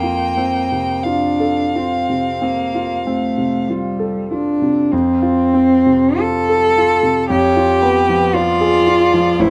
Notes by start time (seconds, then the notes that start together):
Already playing: F2 A#3 G5
0.03 F4
0.37 C4
0.72 C3
1.04 D4 F4 F5
1.40 A4
1.75 C4 F4
2.09 C3
2.42 A#3 C4
2.75 F4
3.06 A3 C4
3.38 C3
3.68 G3 F4
3.99 A4
4.31 D4 F4
4.62 C3
4.92 F2 C4
5.22 F4
5.54 C4
5.86 C3
6.18 F4 A4
6.49 A4
6.78 F4
7.03 C3
7.29 F2 G4 C#5
7.56 F4
7.81 B3 B4
8.09 F3
8.34 F4 D5
8.61 G#4
8.87 F4
9.13 F3
9.39 A1 E4 C5